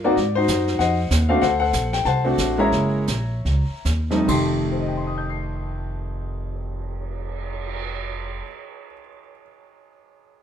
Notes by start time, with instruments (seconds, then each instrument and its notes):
Already playing: upright bass G2, grand piano F4 A#4
0.04 grand piano A#3 C4 D#4 F#4 D5
0.17 upright bass G#2, brush sweep, kick, snare
0.35 grand piano D#4 F#4 C5
0.48 upright bass F#2, kick, snare, hi-hat pedal
0.67 snare
0.79 upright bass F2, grand piano C5 D#5 F#5, brush sweep, kick, snare
1.10 upright bass D#2, kick, snare, hi-hat pedal
1.29 grand piano A3 C4 D4 F#4 F5
1.42 upright bass D2, grand piano A4 C5 F#5, brush sweep, kick, snare
1.60 grand piano A4 C5 F#5
1.73 upright bass A#1, kick, snare, hi-hat pedal
1.93 grand piano G5, snare
2.05 upright bass C2, grand piano C5 F#5 A5, brush sweep, kick, snare
2.24 grand piano A3 C4 D4 F#4
2.38 upright bass A1, kick, snare, hi-hat pedal
2.58 grand piano G#3 A#3 C#4 E4 C#5 E5 A#5
2.72 upright bass F#1, brush sweep, kick, snare
3.07 upright bass A#1, kick, snare, hi-hat pedal
3.45 upright bass C#2, brush sweep, kick, snare
3.85 upright bass D#2, kick, snare, hi-hat pedal
4.10 grand piano F2 G3 A3 C4 D#4, snare
4.26 upright bass F1, grand piano F2 D#3 A3 G4 C6, kick, crash
4.56 cymbal swell
4.72 grand piano C5
4.80 grand piano D#5
4.88 grand piano G5
4.97 grand piano C6
5.07 grand piano D#6
5.18 grand piano G6
5.30 grand piano C7